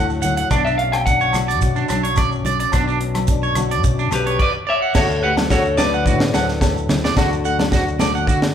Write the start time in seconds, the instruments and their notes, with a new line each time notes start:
Already playing: fingered electric bass D2, nylon-string guitar A2 D3 F#3 A3 E4 F#4
0.10 shekere
0.22 nylon-string guitar F#3, clean electric guitar F#5, closed hi-hat, high conga, low conga, shekere
0.37 clean electric guitar F#5, closed hi-hat, shekere
0.51 fingered electric bass B1, nylon-string guitar B2 F#4, clean electric guitar D4 D5, kick, cross-stick, closed hi-hat, low agogo, shekere
0.65 clean electric guitar D4 E5, shekere
0.78 nylon-string guitar C#4, clean electric guitar F5, closed hi-hat
0.92 clean electric guitar G5, cross-stick, closed hi-hat, low agogo
1.06 nylon-string guitar D4, clean electric guitar F#5, kick, closed hi-hat, shekere
1.20 clean electric guitar C#5, shekere
1.33 nylon-string guitar F#4, cross-stick, closed hi-hat, high conga, low conga, low agogo, shekere
1.48 clean electric guitar D5, closed hi-hat, shekere
1.61 nylon-string guitar F#2, fingered electric bass B2, kick, closed hi-hat, shekere
1.76 clean electric guitar D4, shekere
1.89 fingered electric bass B1, nylon-string guitar F#3, clean electric guitar D4, cross-stick, closed hi-hat, high conga, low agogo, shekere
2.03 clean electric guitar C#5, closed hi-hat, shekere
2.16 nylon-string guitar C#4, clean electric guitar D5, kick, cross-stick, closed hi-hat, low agogo, shekere
2.32 shekere
2.45 nylon-string guitar F#3, clean electric guitar D5, closed hi-hat, high conga, low conga, shekere
2.60 clean electric guitar D5, closed hi-hat, shekere
2.72 fingered electric bass B1, nylon-string guitar B2 F#4, clean electric guitar D4, kick, cross-stick, closed hi-hat, low agogo, shekere
2.87 clean electric guitar D4, shekere
3.01 nylon-string guitar C#4, closed hi-hat
3.15 cross-stick, closed hi-hat, high conga, low agogo, shekere
3.27 nylon-string guitar D4, kick, closed hi-hat, shekere
3.43 clean electric guitar C#5, shekere
3.55 nylon-string guitar F#4, cross-stick, closed hi-hat, high conga, low conga, low agogo, shekere
3.71 clean electric guitar D5, closed hi-hat, shekere
3.83 nylon-string guitar F#2, fingered electric bass B2, kick, closed hi-hat, shekere
3.99 clean electric guitar D4, shekere
4.11 fingered electric bass B1, clean electric guitar G4 B4, muted clean electric guitar stroke, cross-stick, closed hi-hat, high conga, low conga, low agogo, shekere
4.26 clean electric guitar C#5, closed hi-hat
4.39 clean electric guitar B4 D5, kick, crash
4.67 clean electric guitar C#5 D5 E5
4.82 clean electric guitar F#5
4.95 fingered electric bass D2, nylon-string guitar D3 F#4, clean electric guitar F#4 A4 C#5, kick, snare, crash, low agogo, shekere
5.10 shekere
5.23 nylon-string guitar A3, clean electric guitar G4 B4 F#5
5.37 snare, high conga, low agogo
5.50 nylon-string guitar F#4, clean electric guitar F#4 A4 C#5, kick, snare, shekere
5.65 shekere
5.77 nylon-string guitar A3, clean electric guitar B4 D5, snare, high conga, low conga, low agogo, shekere
5.94 clean electric guitar F#5, shekere
6.05 nylon-string guitar A2, fingered electric bass D3, clean electric guitar F#4, kick, shekere
6.20 snare
6.33 fingered electric bass D2, nylon-string guitar F#3, clean electric guitar F#5, snare, high conga, low agogo, shekere
6.48 snare, shekere
6.61 nylon-string guitar A3, kick, snare, low agogo, shekere
6.77 shekere
6.89 nylon-string guitar E4, snare, high conga, low conga, shekere
7.04 clean electric guitar D5, snare, shekere
7.16 fingered electric bass D2, nylon-string guitar D3 F#4, clean electric guitar F#4, kick, snare, low agogo, shekere
7.32 shekere
7.45 nylon-string guitar A3, clean electric guitar F#5, shekere
7.59 snare, high conga, low agogo
7.72 nylon-string guitar F#4, clean electric guitar F#4, kick, snare, shekere
7.88 shekere
7.99 nylon-string guitar A3, clean electric guitar D5, snare, high conga, low conga, low agogo, shekere
8.15 clean electric guitar F#5, shekere
8.27 fingered electric bass D3, clean electric guitar F#4, muted nylon-string guitar stroke, kick, shekere
8.42 snare, shekere